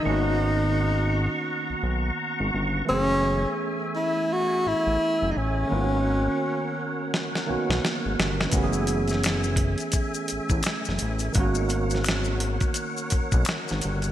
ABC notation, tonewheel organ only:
X:1
M:4/4
L:1/8
Q:"Swing 16ths" 1/4=85
K:G#phr
V:1 name="Tonewheel organ"
[f^ac']8 | [A,eg]8 | [^Acf]8 | [A,eg]8 |
[^Acf]8 |]